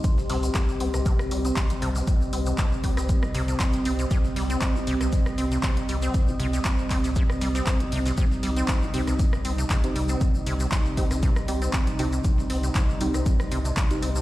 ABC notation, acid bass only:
X:1
M:4/4
L:1/16
Q:"Swing 16ths" 1/4=118
K:Cm
V:1 name="Acid bass" clef=bass
C C, C, C, z2 C C, C, z G, C2 C, C, C, | z2 C C, C, z G, C2 C, C, C, z2 C C, | C, z G, C2 C, C, C, z2 C C, C, z G, C- | C C, C, C, z2 C C, C, z G, C2 C, C, C, |
C, z G, C2 C, C, C, z2 C C, C, z G, C- | C C, C, C, z2 C C, C, z G, C2 C, C, C, | z2 C C, C, z G, C2 C, C, C, z2 C C, |]